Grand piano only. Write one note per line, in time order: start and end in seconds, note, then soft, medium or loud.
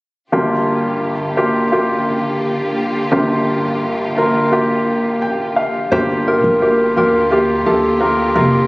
0.32 3.08 G1 soft
0.32 3.08 G2 medium
0.32 1.12 A#3 medium
0.32 1.12 F4 medium
0.32 1.12 G4 medium
1.37 1.64 A#3 medium
1.37 1.64 F4 medium
1.37 1.64 G4 medium
1.72 2.78 A#3 medium
1.72 2.78 F4 soft
1.72 2.78 G4 medium
3.12 5.87 G1 medium
3.12 5.88 G2 medium
3.12 3.91 A#3 medium
3.12 3.92 F4 medium
3.12 3.92 G4 medium
4.17 4.43 A#3 medium
4.17 4.44 F4 medium
4.17 4.44 A#4 medium
4.52 5.58 A#3 medium
4.52 5.58 F4 medium
4.52 5.58 G4 medium
5.22 5.54 G5 medium
5.56 5.89 F5 medium
5.92 6.92 G2 medium
5.92 6.18 A#3 medium
5.92 6.18 F4 medium
5.92 6.18 G4 medium
6.27 6.53 A#3 soft
6.27 6.53 F4 soft
6.27 6.53 G4 medium
6.61 6.88 A#3 medium
6.61 6.88 F4 soft
6.61 6.88 G4 medium
6.96 7.23 A#3 medium
6.96 7.23 F4 medium
6.96 7.23 G4 medium
7.31 7.58 A#3 medium
7.31 7.58 F4 medium
7.31 7.58 G4 medium
7.65 7.92 A#3 medium
7.65 7.93 F4 medium
7.65 7.93 A4 medium
8.00 8.27 A#3 medium
8.00 8.27 F4 medium
8.00 8.27 A#4 medium
8.35 8.62 A#3 medium
8.35 8.62 F4 medium
8.35 8.62 A#4 medium